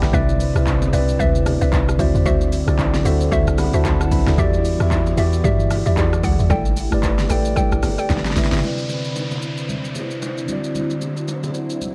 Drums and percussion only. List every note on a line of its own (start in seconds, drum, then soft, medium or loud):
0.02 cross-stick medium
0.02 snare medium
0.02 shaker medium
0.13 kick loud
0.13 low conga medium
0.13 shaker medium
0.29 high bongo soft
0.29 shaker soft
0.40 open hi-hat medium
0.40 shaker medium
0.55 cross-stick loud
0.55 shaker soft
0.66 kick medium
0.66 clap medium
0.66 high bongo medium
0.66 shaker medium
0.82 low bongo medium
0.82 shaker medium
0.93 open hi-hat medium
0.93 high bongo medium
0.93 shaker medium
1.09 shaker medium
1.19 kick loud
1.19 low conga medium
1.19 shaker medium
1.35 shaker medium
1.46 cross-stick loud
1.46 open hi-hat medium
1.46 low bongo medium
1.46 shaker loud
1.62 shaker medium
1.73 kick loud
1.73 clap medium
1.73 high bongo medium
1.73 shaker medium
1.89 cross-stick loud
1.89 shaker medium
1.99 kick medium
1.99 open hi-hat medium
1.99 low conga medium
1.99 shaker loud
2.15 shaker medium
2.26 kick loud
2.26 low conga medium
2.26 shaker medium
2.41 high bongo soft
2.41 shaker soft
2.52 open hi-hat medium
2.52 shaker medium
2.68 cross-stick loud
2.68 shaker medium
2.79 kick medium
2.79 clap medium
2.79 high bongo medium
2.79 shaker medium
2.94 snare medium
2.94 low bongo medium
2.94 shaker medium
3.05 open hi-hat soft
3.05 high bongo medium
3.05 shaker medium
3.21 shaker medium
3.32 kick loud
3.32 low conga medium
3.32 shaker medium
3.47 cross-stick loud
3.47 shaker medium
3.58 cross-stick medium
3.58 open hi-hat medium
3.58 low bongo medium
3.58 shaker loud
3.74 shaker medium
3.85 kick loud
3.85 clap medium
3.85 high bongo medium
3.85 shaker medium
4.01 cross-stick loud
4.01 shaker medium
4.11 kick medium
4.11 open hi-hat medium
4.11 low conga medium
4.11 shaker loud
4.27 cross-stick medium
4.27 snare medium
4.27 shaker medium
4.38 kick loud
4.38 low conga medium
4.38 shaker medium
4.53 high bongo soft
4.53 shaker soft
4.64 open hi-hat medium
4.64 shaker medium
4.80 cross-stick loud
4.80 shaker medium
4.91 kick medium
4.91 clap medium
4.91 high bongo medium
4.91 shaker medium
5.06 low bongo medium
5.06 shaker medium
5.17 open hi-hat medium
5.17 high bongo medium
5.17 shaker medium
5.33 shaker medium
5.44 kick loud
5.44 low conga medium
5.44 shaker medium
5.60 shaker medium
5.71 cross-stick loud
5.71 open hi-hat medium
5.71 low bongo medium
5.71 shaker loud
5.86 shaker medium
5.97 kick loud
5.97 clap medium
5.97 high bongo medium
5.97 shaker medium
6.13 cross-stick loud
6.13 shaker medium
6.24 kick medium
6.24 open hi-hat medium
6.24 low conga medium
6.24 shaker loud
6.40 shaker medium
6.50 kick loud
6.50 low conga medium
6.50 shaker medium
6.66 high bongo soft
6.66 shaker soft
6.77 open hi-hat medium
6.77 shaker medium
6.92 cross-stick loud
6.92 shaker medium
7.04 kick medium
7.04 clap medium
7.04 high bongo medium
7.04 shaker medium
7.19 snare medium
7.19 low bongo medium
7.19 shaker medium
7.30 open hi-hat medium
7.30 high bongo medium
7.30 shaker medium
7.45 shaker medium
7.57 kick loud
7.57 low conga medium
7.57 shaker medium
7.72 cross-stick loud
7.72 shaker medium
7.83 cross-stick loud
7.83 open hi-hat medium
7.83 low bongo medium
7.83 shaker loud
7.98 shaker medium
8.10 kick loud
8.10 snare medium
8.10 high bongo medium
8.10 shaker medium
8.17 snare medium
8.25 snare medium
8.25 shaker medium
8.31 snare medium
8.36 snare medium
8.36 open hi-hat medium
8.36 low conga medium
8.36 shaker loud
8.44 snare medium
8.52 snare loud
8.52 shaker medium
8.57 snare loud
8.63 low conga medium
8.63 shaker medium
8.78 shaker soft
8.89 low bongo soft
8.89 shaker medium
9.05 shaker soft
9.16 high bongo medium
9.16 shaker medium
9.31 low bongo medium
9.31 shaker soft
9.42 shaker medium
9.57 shaker medium
9.69 low conga medium
9.69 shaker medium
9.84 shaker medium
9.95 low bongo medium
9.95 shaker loud
10.11 shaker soft
10.22 high bongo medium
10.22 shaker medium
10.38 shaker medium
10.48 low conga medium
10.48 shaker loud
10.64 shaker medium
10.75 low conga medium
10.75 shaker medium
10.90 shaker soft
11.01 low bongo soft
11.01 shaker medium
11.17 shaker soft
11.28 high bongo medium
11.28 shaker medium
11.44 low bongo medium
11.44 shaker soft
11.54 shaker medium
11.70 shaker medium
11.82 low conga medium
11.82 shaker medium